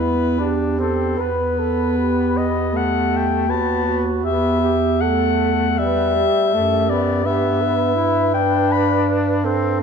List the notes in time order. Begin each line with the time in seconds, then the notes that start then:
Already playing: E2 E4 B4
0.00 B3
0.39 D4 G4
0.79 C4 A4
1.18 E2 B3 B4
1.59 A4
1.98 G4
2.37 D#5
2.73 A3 F#5
3.16 G5
3.48 D#2 B3 F#4 A5
3.85 F#4
4.22 E2 B3 G4 E5
4.61 G4
5.01 A3 A4 F#5
5.78 G3 B4 E5
6.15 G4
6.52 F#2 A3
6.89 B3 D5
7.24 G2 B3 G4 E5
7.62 B4
7.95 E4
8.34 D4 G5
8.72 B5
9.44 C4 A4